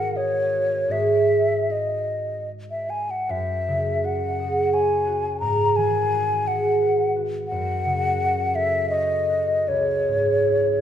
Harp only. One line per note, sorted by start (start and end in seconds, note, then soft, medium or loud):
0.00 0.87 G#2 soft
0.00 0.95 D#3 soft
0.00 0.53 F#4 soft
0.00 0.90 G#4 soft
0.00 0.96 A#4 soft
0.16 3.32 D#5 soft
0.54 0.89 F#4 soft
0.88 3.30 G#2 soft
0.88 4.79 G#3 soft
0.88 4.03 F#4 soft
0.88 4.38 G#4 soft
0.92 4.72 C#5 soft
3.29 5.44 F#2 soft
3.68 5.45 C#3 soft
4.04 5.06 F#4 soft
4.39 6.47 G#4 soft
4.73 5.44 C#5 soft
5.07 6.12 F#4 soft
5.41 7.52 G#2 soft
5.77 7.52 D#3 soft
6.14 7.15 F#4 soft
6.49 7.53 G#4 soft
6.82 7.53 B4 soft
7.16 8.19 F#4 soft
7.51 9.73 F#2 soft
7.85 9.72 C#3 soft
8.20 9.29 F#4 soft
8.55 9.72 A4 soft
8.91 10.81 C#5 soft
9.30 9.72 F#4 soft
9.68 10.81 C#2 soft
10.09 10.81 G#2 soft
10.47 10.81 E4 soft